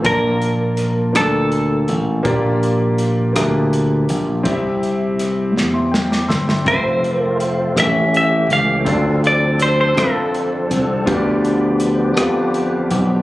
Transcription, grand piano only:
\new Staff \with { instrumentName = "Grand piano" } { \time 6/8 \key g \dorian \tempo 4. = 54 << { bes,4. r4. | bes,4. r4. | c4. r16 <e'' c'''>16 g''16 d'''16 <g'' c''' e'''>16 <e'' c'''>16~ | <e'' c'''>16 r4 r16 a,4. |
d4. r4. | d4. r4. | } \\ { <bes f' d'' a''>4 r8 <bes f' a' d''>4 r8 | <bes f' g' d''>4 r8 <bes f' g' e''>4 r8 | <c' e' g' d'' e''>4 r2 | <c' f' a' e''>4 r8 <bes cis' g' a' e''>4 r8 |
<c' f' a' d''>4 r8 <c' f' a' e'' f''>4 r8 | <b f' g' c'' d''>4 r8 <b f' g' f''>4 r8 | } >> }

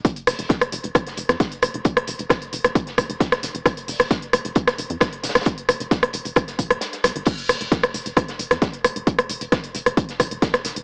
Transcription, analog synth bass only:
\new Staff \with { instrumentName = "Analog synth bass" } { \clef bass \time 4/4 \key f \minor \tempo 4 = 133 r8 f,,16 f,,16 r8 f,,16 f,,16 r8 f,,16 f,16 r8 f,,16 f,,16 | r8 f,,16 f,,16 r8 f,,16 f,,16 r8 f,,16 f,,16 r8 f,,16 f,,16 | r8 f,,16 f,,16 r8 f,,16 f,,16 r8 f,,16 f,16 r8 f,,16 f,,16 | r8 f,,16 f,,16 r8 f,,16 f,,16 r8 f,,16 ees,,16 r8 c,16 aes,,16 |
r8 f,,16 f,,16 r8 f,,16 f,,16 r8 f,,16 f,16 r8 f,,16 f,,16 | r8 f,,16 f,,16 r8 f,,16 f,,16 r8 f,,16 f,,16 r8 f,,16 f,,16 | }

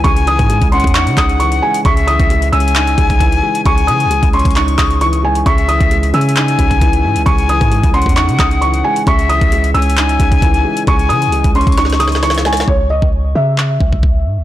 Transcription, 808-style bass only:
\new Staff \with { instrumentName = "808-style bass" } { \clef bass \time 4/4 \key cis \minor \tempo 4 = 133 cis,8. gis,8 cis,8 e,8 cis16 cis,4 r8 | cis,8. cis,8. cis,4 cis,4 r8 | cis,8 cis16. cis,16. cis,8 cis,8. cis,4. | cis,8. cis,8. cis4 cis,4 gis,16 cis,16 |
cis,8. gis,8 cis,8 e,8 cis16 cis,4 r8 | cis,8. cis,8. cis,4 cis,16 cis,16 cis,8 r8 | cis,8 cis16. cis,16. cis,8 cis,2~ cis,16 | cis,8. cis,8. cis4 cis,4 gis,16 cis,16 | }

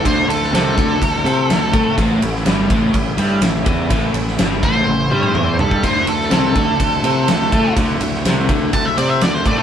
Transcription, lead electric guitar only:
\new Staff \with { instrumentName = "Lead electric guitar" } { \time 4/4 \key d \major \tempo 4 = 124 c''8 a'8 a'2. | r1 | r4. c''2 a'8 | c''8 a'8 a'2. |
r2 a''16 e''16 d''16 e''16 d''16 c''16 d''16 a'16 | }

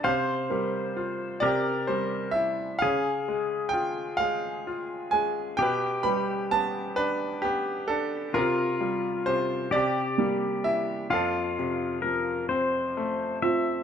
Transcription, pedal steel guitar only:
\new Staff \with { instrumentName = "Pedal steel guitar" } { \time 6/8 \key c \mixolydian \tempo 4. = 43 << { r2. | r2. | r2. | r2. |
r4 bes'8 c''4 e''8 | } \\ { c''4. bes'4 r8 | aes'2. | g'2. | f'4. g'4. |
f'2~ f'8 r8 | } >> }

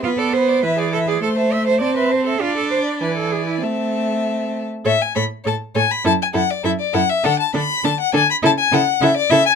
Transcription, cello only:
\new Staff \with { instrumentName = "Cello" } { \time 2/4 \key a \minor \tempo 4 = 101 f'16 a'16 c''8 b'16 gis'16 a'16 gis'16 | a'16 c''16 e''16 c''16 d''16 b'16 c''16 a'16 | f'16 a'16 c''8 b'16 a'16 gis'16 e'16 | c'4. r8 |
\key a \major a,8 a,8 a,8 a,8 | fis,8 fis,8 fis,8 fis,8 | d8 d8 d8 d8 | cis8 cis8 cis8 cis8 | }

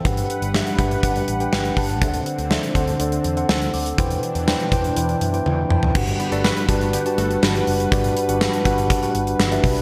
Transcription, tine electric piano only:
<<
  \new Staff \with { instrumentName = "Tine electric piano" } { \time 4/4 \key g \major \tempo 4 = 122 << { <g'' e'''>8 r2. r8 | r2. e'''8 <fis'' d'''>8~ | <fis'' d'''>8 r2 e''8 g''8 a''8 | r1 |
r1 | } \\ { <d' g' b' fis''>8. r16 <d' g' b' e''>16 r16 <d' g' b' fis''>16 r16 <d' g' b' fis''>8 r16 <d' g' b' g''>8 r16 <d' g' b' a''>16 r16 | <d' a' c'' e'' fis''>8. r16 <d' a' c'' e''>16 r16 <d' a' c'' fis''>16 r16 <d' a' c'' d''>8 r16 <d' a' c'' fis''>8 r8. | <e' b' c'' g''>8. r16 <e' b' c'' g''>16 r16 <e' b' c'' g''>16 r16 <e' b' c'' g''>8 r16 <e' b' c'' g''>8 r16 <e' b' c'' g''>16 r16 | <d' fis' g' b' fis''>8 r16 <d' fis' g' b' d''>8 r16 <d' fis' g' b' a''>8 r16 <d' fis' g' b' a''>8. r16 <d' fis' g' b' fis''>8 r16 |
<d' fis' g' b' d''>8 r16 <d' fis' g' b' fis''>8 r16 <d' fis' g' b' fis''>8 r16 <d' fis' g' b' fis''>8. r16 <d' fis' g' b' e''>8 r16 | } >> }
  \new Staff \with { instrumentName = "Tine electric piano" } { \clef bass \time 4/4 \key g \major g,4. r2 r8 | d4. r2 r8 | e4. r2 r8 | g,4. r2 r8 |
g,4. r2 r8 | }
>>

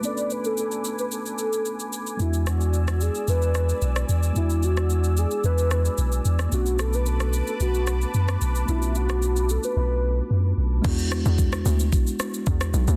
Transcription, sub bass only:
\new Staff \with { instrumentName = "Sub bass" } { \clef bass \time 4/4 \key e \mixolydian \tempo 4 = 111 r1 | e,2 e,4 b,,8 e,8 | e,2 e,4 b,,8 e,8 | b,,2 b,,4 fis,8 b,,8 |
b,,2 b,,4 fis,8 b,,8 | r1 | }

